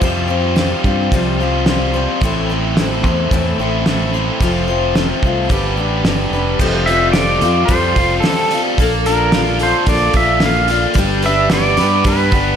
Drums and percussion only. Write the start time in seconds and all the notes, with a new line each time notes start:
0.02 kick, open hi-hat
0.56 snare, open hi-hat
0.84 kick
1.12 kick, open hi-hat
1.66 snare, open hi-hat
2.21 kick, open hi-hat
2.77 snare, open hi-hat
3.04 kick
3.31 kick, open hi-hat
3.86 snare, open hi-hat
4.41 kick, open hi-hat
4.96 snare, open hi-hat
5.23 kick
5.49 kick, open hi-hat
6.05 snare, open hi-hat
6.59 kick, crash
6.87 open hi-hat
7.13 snare, open hi-hat
7.41 open hi-hat
7.68 kick, open hi-hat
7.96 kick, open hi-hat
8.24 snare, open hi-hat
8.51 open hi-hat
8.78 kick, open hi-hat
9.06 open hi-hat
9.32 snare, open hi-hat
9.59 open hi-hat
9.86 kick, open hi-hat
10.13 kick, open hi-hat
10.40 snare, open hi-hat
10.68 open hi-hat
10.94 kick, open hi-hat
11.22 open hi-hat
11.50 snare, open hi-hat
11.77 open hi-hat
12.04 kick, open hi-hat
12.32 kick, open hi-hat